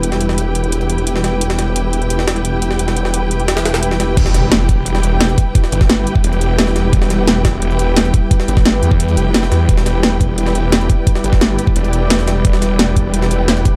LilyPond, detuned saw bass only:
\new Staff \with { instrumentName = "Detuned saw bass" } { \clef bass \time 4/4 \key e \minor \tempo 4 = 174 e,,1~ | e,,1~ | e,,1 | e,,2~ e,,8 e,,4 r8 |
r8 g,,4 r8 e,,4. e,,8 | e,,2~ e,,8 e,,4 r8 | r8 g,,4 e,4 f,,4 e,8 | e,,2~ e,,8 e,,4 r8 |
r8 g,,4 r8 e,,4. e,,8 | e,,2~ e,,8 e,,4 r8 | }